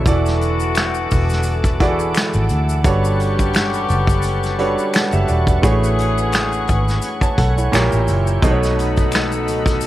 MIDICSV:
0, 0, Header, 1, 7, 480
1, 0, Start_track
1, 0, Key_signature, 3, "major"
1, 0, Tempo, 697674
1, 38, Time_signature, 4, 2, 24, 8
1, 6789, End_track
2, 0, Start_track
2, 0, Title_t, "Tonewheel organ"
2, 0, Program_c, 0, 16
2, 0, Note_on_c, 0, 76, 59
2, 36, Note_on_c, 0, 78, 57
2, 38, Note_on_c, 0, 69, 66
2, 38, Note_on_c, 0, 86, 73
2, 1930, Note_off_c, 0, 76, 0
2, 1937, Note_off_c, 0, 78, 0
2, 1938, Note_off_c, 0, 86, 0
2, 1939, Note_off_c, 0, 69, 0
2, 1962, Note_on_c, 0, 71, 64
2, 1962, Note_on_c, 0, 81, 58
2, 1963, Note_on_c, 0, 85, 75
2, 1965, Note_on_c, 0, 78, 57
2, 3860, Note_off_c, 0, 81, 0
2, 3861, Note_off_c, 0, 85, 0
2, 3874, Note_on_c, 0, 85, 70
2, 3878, Note_on_c, 0, 80, 57
2, 5292, Note_off_c, 0, 71, 0
2, 5294, Note_off_c, 0, 78, 0
2, 5304, Note_off_c, 0, 80, 0
2, 5311, Note_on_c, 0, 70, 67
2, 5311, Note_on_c, 0, 79, 62
2, 5314, Note_on_c, 0, 76, 59
2, 5777, Note_off_c, 0, 85, 0
2, 5790, Note_off_c, 0, 70, 0
2, 5790, Note_off_c, 0, 79, 0
2, 5791, Note_off_c, 0, 76, 0
2, 5794, Note_on_c, 0, 57, 64
2, 5794, Note_on_c, 0, 75, 59
2, 5795, Note_on_c, 0, 83, 71
2, 5796, Note_on_c, 0, 78, 59
2, 6789, Note_off_c, 0, 57, 0
2, 6789, Note_off_c, 0, 75, 0
2, 6789, Note_off_c, 0, 78, 0
2, 6789, Note_off_c, 0, 83, 0
2, 6789, End_track
3, 0, Start_track
3, 0, Title_t, "Grand piano"
3, 0, Program_c, 1, 0
3, 0, Control_c, 1, 64, 127
3, 39, Note_on_c, 1, 52, 79
3, 44, Note_on_c, 1, 64, 73
3, 46, Control_c, 1, 64, 0
3, 47, Note_on_c, 1, 66, 76
3, 53, Note_on_c, 1, 69, 81
3, 54, Note_on_c, 1, 74, 96
3, 171, Control_c, 1, 64, 127
3, 802, Note_off_c, 1, 52, 0
3, 804, Note_off_c, 1, 64, 0
3, 806, Note_off_c, 1, 66, 0
3, 808, Note_off_c, 1, 69, 0
3, 809, Note_off_c, 1, 74, 0
3, 1236, Note_on_c, 1, 52, 76
3, 1239, Note_on_c, 1, 64, 74
3, 1241, Note_on_c, 1, 66, 77
3, 1249, Note_on_c, 1, 68, 60
3, 1251, Note_on_c, 1, 74, 88
3, 1292, Note_off_c, 1, 68, 0
3, 1292, Note_on_c, 1, 69, 78
3, 1815, Note_off_c, 1, 52, 0
3, 1817, Note_off_c, 1, 64, 0
3, 1818, Note_off_c, 1, 66, 0
3, 1823, Note_off_c, 1, 74, 0
3, 1843, Note_off_c, 1, 69, 0
3, 1954, Note_on_c, 1, 55, 82
3, 1960, Note_on_c, 1, 62, 76
3, 1960, Note_on_c, 1, 66, 81
3, 1964, Note_on_c, 1, 69, 76
3, 1966, Control_c, 1, 64, 0
3, 1968, Note_on_c, 1, 71, 75
3, 1971, Note_on_c, 1, 73, 94
3, 2092, Control_c, 1, 64, 127
3, 2719, Note_off_c, 1, 55, 0
3, 2722, Note_off_c, 1, 62, 0
3, 2722, Note_off_c, 1, 66, 0
3, 2724, Note_off_c, 1, 69, 0
3, 2726, Note_off_c, 1, 71, 0
3, 2728, Note_off_c, 1, 73, 0
3, 3151, Note_on_c, 1, 55, 81
3, 3155, Note_on_c, 1, 62, 74
3, 3158, Note_on_c, 1, 66, 77
3, 3162, Note_on_c, 1, 69, 71
3, 3165, Note_on_c, 1, 71, 75
3, 3169, Note_on_c, 1, 73, 90
3, 3391, Note_off_c, 1, 69, 0
3, 3396, Note_off_c, 1, 62, 0
3, 3398, Note_off_c, 1, 66, 0
3, 3400, Note_on_c, 1, 78, 61
3, 3401, Note_off_c, 1, 71, 0
3, 3402, Note_on_c, 1, 69, 49
3, 3403, Note_off_c, 1, 73, 0
3, 3524, Note_off_c, 1, 78, 0
3, 3525, Note_off_c, 1, 69, 0
3, 3528, Note_on_c, 1, 76, 72
3, 3534, Note_on_c, 1, 67, 59
3, 3632, Note_off_c, 1, 76, 0
3, 3635, Note_off_c, 1, 67, 0
3, 3635, Note_on_c, 1, 74, 69
3, 3640, Note_on_c, 1, 66, 59
3, 3733, Note_off_c, 1, 55, 0
3, 3761, Note_off_c, 1, 74, 0
3, 3764, Note_off_c, 1, 66, 0
3, 3769, Note_on_c, 1, 71, 61
3, 3773, Note_on_c, 1, 62, 48
3, 3866, Note_on_c, 1, 57, 83
3, 3870, Note_off_c, 1, 71, 0
3, 3870, Note_on_c, 1, 64, 74
3, 3873, Note_on_c, 1, 66, 80
3, 3876, Note_on_c, 1, 68, 77
3, 3881, Note_on_c, 1, 71, 77
3, 3883, Note_on_c, 1, 73, 95
3, 3886, Control_c, 1, 64, 0
3, 3991, Control_c, 1, 64, 127
3, 3999, Note_off_c, 1, 62, 0
3, 4635, Note_off_c, 1, 57, 0
3, 4637, Note_off_c, 1, 64, 0
3, 4638, Note_off_c, 1, 66, 0
3, 4640, Note_off_c, 1, 68, 0
3, 4642, Note_off_c, 1, 71, 0
3, 4644, Note_off_c, 1, 73, 0
3, 4970, Note_on_c, 1, 81, 63
3, 4974, Note_on_c, 1, 73, 52
3, 5072, Note_off_c, 1, 81, 0
3, 5074, Note_off_c, 1, 73, 0
3, 5076, Note_on_c, 1, 78, 70
3, 5079, Note_on_c, 1, 69, 61
3, 5202, Note_off_c, 1, 78, 0
3, 5204, Note_off_c, 1, 69, 0
3, 5211, Note_on_c, 1, 73, 61
3, 5214, Note_on_c, 1, 64, 50
3, 5309, Note_off_c, 1, 64, 0
3, 5310, Note_on_c, 1, 46, 85
3, 5315, Note_on_c, 1, 58, 80
3, 5318, Note_off_c, 1, 73, 0
3, 5320, Note_on_c, 1, 64, 77
3, 5324, Note_on_c, 1, 67, 79
3, 5327, Control_c, 1, 64, 0
3, 5329, Note_on_c, 1, 73, 95
3, 5454, Control_c, 1, 64, 127
3, 5707, Note_off_c, 1, 46, 0
3, 5710, Note_off_c, 1, 58, 0
3, 5712, Note_off_c, 1, 64, 0
3, 5714, Note_off_c, 1, 67, 0
3, 5716, Note_off_c, 1, 73, 0
3, 5797, Note_on_c, 1, 47, 89
3, 5800, Note_on_c, 1, 59, 79
3, 5804, Note_on_c, 1, 63, 76
3, 5807, Control_c, 1, 64, 0
3, 5808, Note_on_c, 1, 69, 75
3, 5811, Note_on_c, 1, 72, 74
3, 5853, Note_off_c, 1, 72, 0
3, 5857, Note_on_c, 1, 73, 94
3, 5937, Control_c, 1, 64, 127
3, 6560, Note_off_c, 1, 47, 0
3, 6562, Note_off_c, 1, 59, 0
3, 6564, Note_off_c, 1, 63, 0
3, 6566, Note_off_c, 1, 69, 0
3, 6591, Note_off_c, 1, 73, 0
3, 6789, End_track
4, 0, Start_track
4, 0, Title_t, "Horn section"
4, 0, Program_c, 2, 61
4, 38, Note_on_c, 2, 66, 81
4, 39, Note_on_c, 2, 50, 75
4, 39, Note_on_c, 2, 59, 69
4, 1690, Note_off_c, 2, 66, 0
4, 1691, Note_off_c, 2, 50, 0
4, 1691, Note_off_c, 2, 59, 0
4, 1955, Note_on_c, 2, 67, 79
4, 1956, Note_on_c, 2, 50, 70
4, 1956, Note_on_c, 2, 61, 71
4, 3609, Note_off_c, 2, 50, 0
4, 3609, Note_off_c, 2, 61, 0
4, 3609, Note_off_c, 2, 67, 0
4, 3877, Note_on_c, 2, 61, 69
4, 3877, Note_on_c, 2, 68, 75
4, 3879, Note_on_c, 2, 52, 69
4, 5053, Note_off_c, 2, 61, 0
4, 5053, Note_off_c, 2, 68, 0
4, 5054, Note_off_c, 2, 52, 0
4, 5315, Note_on_c, 2, 64, 62
4, 5315, Note_on_c, 2, 70, 70
4, 5316, Note_on_c, 2, 55, 68
4, 5552, Note_off_c, 2, 55, 0
4, 5552, Note_off_c, 2, 64, 0
4, 5552, Note_off_c, 2, 70, 0
4, 5797, Note_on_c, 2, 54, 71
4, 5798, Note_on_c, 2, 63, 73
4, 5798, Note_on_c, 2, 69, 79
4, 6789, Note_off_c, 2, 54, 0
4, 6789, Note_off_c, 2, 63, 0
4, 6789, Note_off_c, 2, 69, 0
4, 6789, End_track
5, 0, Start_track
5, 0, Title_t, "Fingered electric bass"
5, 0, Program_c, 3, 33
5, 45, Note_on_c, 3, 28, 101
5, 734, Note_off_c, 3, 28, 0
5, 774, Note_on_c, 3, 28, 88
5, 1458, Note_off_c, 3, 28, 0
5, 1615, Note_on_c, 3, 32, 90
5, 1703, Note_off_c, 3, 32, 0
5, 1723, Note_on_c, 3, 38, 88
5, 1961, Note_on_c, 3, 31, 98
5, 1971, Note_off_c, 3, 38, 0
5, 2652, Note_off_c, 3, 31, 0
5, 2683, Note_on_c, 3, 30, 89
5, 3264, Note_off_c, 3, 30, 0
5, 3531, Note_on_c, 3, 30, 84
5, 3621, Note_off_c, 3, 30, 0
5, 3642, Note_on_c, 3, 28, 85
5, 3841, Note_off_c, 3, 28, 0
5, 3881, Note_on_c, 3, 33, 94
5, 4606, Note_on_c, 3, 32, 91
5, 4617, Note_off_c, 3, 33, 0
5, 4804, Note_off_c, 3, 32, 0
5, 5082, Note_on_c, 3, 35, 87
5, 5281, Note_off_c, 3, 35, 0
5, 5321, Note_on_c, 3, 34, 98
5, 5430, Note_off_c, 3, 34, 0
5, 5455, Note_on_c, 3, 33, 89
5, 5543, Note_off_c, 3, 33, 0
5, 5564, Note_on_c, 3, 30, 82
5, 5762, Note_off_c, 3, 30, 0
5, 5798, Note_on_c, 3, 35, 99
5, 6520, Note_off_c, 3, 35, 0
5, 6520, Note_on_c, 3, 37, 92
5, 6789, Note_off_c, 3, 37, 0
5, 6789, End_track
6, 0, Start_track
6, 0, Title_t, "Muted fingered electric bass strokes"
6, 4967, Note_on_c, 9, 29, 41
6, 5036, Note_off_c, 9, 29, 0
6, 6789, End_track
7, 0, Start_track
7, 0, Title_t, "Drums"
7, 39, Note_on_c, 9, 36, 115
7, 39, Note_on_c, 9, 42, 83
7, 47, Note_on_c, 9, 82, 71
7, 108, Note_off_c, 9, 36, 0
7, 108, Note_off_c, 9, 42, 0
7, 116, Note_off_c, 9, 82, 0
7, 178, Note_on_c, 9, 82, 52
7, 189, Note_on_c, 9, 38, 35
7, 247, Note_off_c, 9, 82, 0
7, 258, Note_off_c, 9, 38, 0
7, 283, Note_on_c, 9, 42, 64
7, 290, Note_on_c, 9, 82, 44
7, 351, Note_off_c, 9, 42, 0
7, 359, Note_off_c, 9, 82, 0
7, 411, Note_on_c, 9, 82, 46
7, 479, Note_off_c, 9, 82, 0
7, 513, Note_on_c, 9, 42, 78
7, 516, Note_on_c, 9, 26, 58
7, 516, Note_on_c, 9, 82, 58
7, 531, Note_on_c, 9, 38, 97
7, 533, Note_off_c, 9, 26, 0
7, 533, Note_on_c, 9, 26, 83
7, 582, Note_off_c, 9, 42, 0
7, 585, Note_off_c, 9, 82, 0
7, 600, Note_off_c, 9, 38, 0
7, 602, Note_off_c, 9, 26, 0
7, 649, Note_on_c, 9, 82, 41
7, 718, Note_off_c, 9, 82, 0
7, 759, Note_on_c, 9, 46, 45
7, 763, Note_on_c, 9, 82, 54
7, 769, Note_on_c, 9, 36, 81
7, 828, Note_off_c, 9, 46, 0
7, 832, Note_off_c, 9, 82, 0
7, 838, Note_off_c, 9, 36, 0
7, 891, Note_on_c, 9, 82, 46
7, 912, Note_on_c, 9, 38, 37
7, 960, Note_off_c, 9, 82, 0
7, 981, Note_off_c, 9, 38, 0
7, 985, Note_on_c, 9, 82, 71
7, 1004, Note_on_c, 9, 42, 75
7, 1053, Note_off_c, 9, 82, 0
7, 1073, Note_off_c, 9, 42, 0
7, 1128, Note_on_c, 9, 36, 85
7, 1132, Note_on_c, 9, 82, 50
7, 1197, Note_off_c, 9, 36, 0
7, 1201, Note_off_c, 9, 82, 0
7, 1238, Note_on_c, 9, 42, 77
7, 1241, Note_on_c, 9, 36, 89
7, 1307, Note_off_c, 9, 42, 0
7, 1309, Note_off_c, 9, 36, 0
7, 1371, Note_on_c, 9, 82, 51
7, 1440, Note_off_c, 9, 82, 0
7, 1476, Note_on_c, 9, 26, 64
7, 1476, Note_on_c, 9, 82, 61
7, 1486, Note_on_c, 9, 42, 87
7, 1494, Note_on_c, 9, 38, 105
7, 1496, Note_off_c, 9, 26, 0
7, 1496, Note_on_c, 9, 26, 89
7, 1545, Note_off_c, 9, 82, 0
7, 1554, Note_off_c, 9, 42, 0
7, 1562, Note_off_c, 9, 38, 0
7, 1564, Note_off_c, 9, 26, 0
7, 1606, Note_on_c, 9, 82, 47
7, 1675, Note_off_c, 9, 82, 0
7, 1714, Note_on_c, 9, 82, 44
7, 1719, Note_on_c, 9, 42, 60
7, 1783, Note_off_c, 9, 82, 0
7, 1788, Note_off_c, 9, 42, 0
7, 1851, Note_on_c, 9, 82, 51
7, 1920, Note_off_c, 9, 82, 0
7, 1956, Note_on_c, 9, 42, 82
7, 1957, Note_on_c, 9, 36, 125
7, 1962, Note_on_c, 9, 82, 67
7, 2025, Note_off_c, 9, 42, 0
7, 2026, Note_off_c, 9, 36, 0
7, 2031, Note_off_c, 9, 82, 0
7, 2096, Note_on_c, 9, 82, 54
7, 2164, Note_off_c, 9, 82, 0
7, 2199, Note_on_c, 9, 42, 61
7, 2208, Note_on_c, 9, 82, 45
7, 2268, Note_off_c, 9, 42, 0
7, 2277, Note_off_c, 9, 82, 0
7, 2333, Note_on_c, 9, 36, 81
7, 2333, Note_on_c, 9, 82, 47
7, 2402, Note_off_c, 9, 36, 0
7, 2402, Note_off_c, 9, 82, 0
7, 2430, Note_on_c, 9, 42, 75
7, 2440, Note_on_c, 9, 26, 58
7, 2440, Note_on_c, 9, 82, 59
7, 2448, Note_on_c, 9, 38, 98
7, 2450, Note_off_c, 9, 26, 0
7, 2450, Note_on_c, 9, 26, 80
7, 2498, Note_off_c, 9, 42, 0
7, 2509, Note_off_c, 9, 82, 0
7, 2517, Note_off_c, 9, 38, 0
7, 2518, Note_off_c, 9, 26, 0
7, 2571, Note_on_c, 9, 82, 43
7, 2640, Note_off_c, 9, 82, 0
7, 2671, Note_on_c, 9, 42, 58
7, 2681, Note_on_c, 9, 82, 54
7, 2740, Note_off_c, 9, 42, 0
7, 2750, Note_off_c, 9, 82, 0
7, 2803, Note_on_c, 9, 36, 90
7, 2813, Note_on_c, 9, 82, 49
7, 2871, Note_off_c, 9, 36, 0
7, 2882, Note_off_c, 9, 82, 0
7, 2905, Note_on_c, 9, 82, 73
7, 2916, Note_on_c, 9, 42, 76
7, 2974, Note_off_c, 9, 82, 0
7, 2985, Note_off_c, 9, 42, 0
7, 3050, Note_on_c, 9, 82, 51
7, 3064, Note_on_c, 9, 38, 36
7, 3119, Note_off_c, 9, 82, 0
7, 3133, Note_off_c, 9, 38, 0
7, 3155, Note_on_c, 9, 42, 70
7, 3224, Note_off_c, 9, 42, 0
7, 3291, Note_on_c, 9, 82, 50
7, 3360, Note_off_c, 9, 82, 0
7, 3397, Note_on_c, 9, 26, 63
7, 3397, Note_on_c, 9, 82, 58
7, 3402, Note_on_c, 9, 42, 89
7, 3411, Note_on_c, 9, 38, 107
7, 3412, Note_off_c, 9, 26, 0
7, 3412, Note_on_c, 9, 26, 87
7, 3466, Note_off_c, 9, 82, 0
7, 3471, Note_off_c, 9, 42, 0
7, 3479, Note_off_c, 9, 38, 0
7, 3481, Note_off_c, 9, 26, 0
7, 3524, Note_on_c, 9, 82, 46
7, 3593, Note_off_c, 9, 82, 0
7, 3634, Note_on_c, 9, 82, 45
7, 3635, Note_on_c, 9, 42, 58
7, 3703, Note_off_c, 9, 82, 0
7, 3704, Note_off_c, 9, 42, 0
7, 3763, Note_on_c, 9, 36, 88
7, 3769, Note_on_c, 9, 82, 50
7, 3832, Note_off_c, 9, 36, 0
7, 3838, Note_off_c, 9, 82, 0
7, 3873, Note_on_c, 9, 42, 76
7, 3875, Note_on_c, 9, 36, 117
7, 3880, Note_on_c, 9, 82, 69
7, 3942, Note_off_c, 9, 42, 0
7, 3944, Note_off_c, 9, 36, 0
7, 3949, Note_off_c, 9, 82, 0
7, 4015, Note_on_c, 9, 82, 55
7, 4084, Note_off_c, 9, 82, 0
7, 4117, Note_on_c, 9, 42, 66
7, 4131, Note_on_c, 9, 82, 43
7, 4186, Note_off_c, 9, 42, 0
7, 4199, Note_off_c, 9, 82, 0
7, 4252, Note_on_c, 9, 82, 42
7, 4321, Note_off_c, 9, 82, 0
7, 4348, Note_on_c, 9, 42, 73
7, 4356, Note_on_c, 9, 26, 57
7, 4356, Note_on_c, 9, 82, 55
7, 4367, Note_on_c, 9, 38, 100
7, 4368, Note_off_c, 9, 26, 0
7, 4368, Note_on_c, 9, 26, 79
7, 4417, Note_off_c, 9, 42, 0
7, 4425, Note_off_c, 9, 82, 0
7, 4435, Note_off_c, 9, 38, 0
7, 4437, Note_off_c, 9, 26, 0
7, 4488, Note_on_c, 9, 82, 43
7, 4557, Note_off_c, 9, 82, 0
7, 4590, Note_on_c, 9, 42, 61
7, 4601, Note_on_c, 9, 82, 55
7, 4604, Note_on_c, 9, 36, 84
7, 4659, Note_off_c, 9, 42, 0
7, 4670, Note_off_c, 9, 82, 0
7, 4672, Note_off_c, 9, 36, 0
7, 4735, Note_on_c, 9, 82, 45
7, 4741, Note_on_c, 9, 38, 38
7, 4803, Note_off_c, 9, 82, 0
7, 4810, Note_off_c, 9, 38, 0
7, 4829, Note_on_c, 9, 82, 72
7, 4833, Note_on_c, 9, 42, 76
7, 4898, Note_off_c, 9, 82, 0
7, 4901, Note_off_c, 9, 42, 0
7, 4963, Note_on_c, 9, 36, 85
7, 4971, Note_on_c, 9, 82, 53
7, 5031, Note_off_c, 9, 36, 0
7, 5040, Note_off_c, 9, 82, 0
7, 5074, Note_on_c, 9, 42, 73
7, 5077, Note_on_c, 9, 36, 89
7, 5143, Note_off_c, 9, 42, 0
7, 5145, Note_off_c, 9, 36, 0
7, 5214, Note_on_c, 9, 82, 47
7, 5283, Note_off_c, 9, 82, 0
7, 5320, Note_on_c, 9, 26, 61
7, 5320, Note_on_c, 9, 82, 63
7, 5323, Note_on_c, 9, 42, 86
7, 5331, Note_on_c, 9, 38, 104
7, 5333, Note_off_c, 9, 26, 0
7, 5333, Note_on_c, 9, 26, 88
7, 5389, Note_off_c, 9, 82, 0
7, 5392, Note_off_c, 9, 42, 0
7, 5400, Note_off_c, 9, 38, 0
7, 5402, Note_off_c, 9, 26, 0
7, 5449, Note_on_c, 9, 82, 44
7, 5518, Note_off_c, 9, 82, 0
7, 5557, Note_on_c, 9, 82, 48
7, 5558, Note_on_c, 9, 42, 61
7, 5626, Note_off_c, 9, 42, 0
7, 5626, Note_off_c, 9, 82, 0
7, 5690, Note_on_c, 9, 82, 52
7, 5759, Note_off_c, 9, 82, 0
7, 5796, Note_on_c, 9, 36, 118
7, 5796, Note_on_c, 9, 42, 82
7, 5804, Note_on_c, 9, 82, 66
7, 5864, Note_off_c, 9, 42, 0
7, 5865, Note_off_c, 9, 36, 0
7, 5873, Note_off_c, 9, 82, 0
7, 5939, Note_on_c, 9, 82, 55
7, 5948, Note_on_c, 9, 38, 34
7, 6008, Note_off_c, 9, 82, 0
7, 6017, Note_off_c, 9, 38, 0
7, 6045, Note_on_c, 9, 42, 65
7, 6052, Note_on_c, 9, 82, 43
7, 6114, Note_off_c, 9, 42, 0
7, 6121, Note_off_c, 9, 82, 0
7, 6171, Note_on_c, 9, 82, 46
7, 6174, Note_on_c, 9, 36, 82
7, 6239, Note_off_c, 9, 82, 0
7, 6243, Note_off_c, 9, 36, 0
7, 6274, Note_on_c, 9, 26, 60
7, 6274, Note_on_c, 9, 82, 55
7, 6276, Note_on_c, 9, 42, 75
7, 6294, Note_on_c, 9, 38, 106
7, 6296, Note_off_c, 9, 26, 0
7, 6296, Note_on_c, 9, 26, 82
7, 6342, Note_off_c, 9, 82, 0
7, 6344, Note_off_c, 9, 42, 0
7, 6363, Note_off_c, 9, 38, 0
7, 6364, Note_off_c, 9, 26, 0
7, 6411, Note_on_c, 9, 82, 43
7, 6479, Note_off_c, 9, 82, 0
7, 6519, Note_on_c, 9, 42, 61
7, 6522, Note_on_c, 9, 82, 53
7, 6588, Note_off_c, 9, 42, 0
7, 6591, Note_off_c, 9, 82, 0
7, 6644, Note_on_c, 9, 36, 93
7, 6652, Note_on_c, 9, 82, 47
7, 6667, Note_on_c, 9, 38, 37
7, 6713, Note_off_c, 9, 36, 0
7, 6721, Note_off_c, 9, 82, 0
7, 6736, Note_off_c, 9, 38, 0
7, 6748, Note_on_c, 9, 82, 70
7, 6760, Note_on_c, 9, 42, 77
7, 6789, Note_off_c, 9, 42, 0
7, 6789, Note_off_c, 9, 82, 0
7, 6789, End_track
0, 0, End_of_file